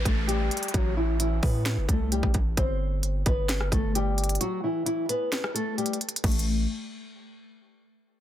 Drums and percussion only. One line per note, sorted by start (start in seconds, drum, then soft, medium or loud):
0.05 kick medium
0.05 closed hi-hat medium
0.29 closed hi-hat medium
0.51 closed hi-hat medium
0.57 closed hi-hat medium
0.63 closed hi-hat medium
0.68 closed hi-hat medium
0.74 kick loud
0.74 closed hi-hat medium
1.20 closed hi-hat loud
1.43 kick loud
1.43 open hi-hat medium
1.66 snare loud
1.66 closed hi-hat medium
1.89 kick loud
1.89 closed hi-hat medium
2.12 closed hi-hat medium
2.23 kick medium
2.34 kick medium
2.34 closed hi-hat medium
2.57 kick loud
2.57 closed hi-hat medium
3.03 closed hi-hat loud
3.26 kick loud
3.26 closed hi-hat medium
3.49 snare loud
3.49 closed hi-hat medium
3.61 cross-stick medium
3.72 kick medium
3.72 closed hi-hat medium
3.95 closed hi-hat medium
4.18 closed hi-hat medium
4.24 closed hi-hat medium
4.29 closed hi-hat medium
4.35 closed hi-hat medium
4.41 closed hi-hat medium
4.86 closed hi-hat loud
5.09 closed hi-hat medium
5.32 snare loud
5.32 closed hi-hat medium
5.44 cross-stick loud
5.56 closed hi-hat medium
5.78 closed hi-hat soft
5.86 closed hi-hat medium
5.93 closed hi-hat medium
6.01 closed hi-hat medium
6.09 closed hi-hat medium
6.16 closed hi-hat medium
6.24 kick loud
6.24 closed hi-hat medium
6.24 crash medium
6.31 closed hi-hat medium
6.39 closed hi-hat medium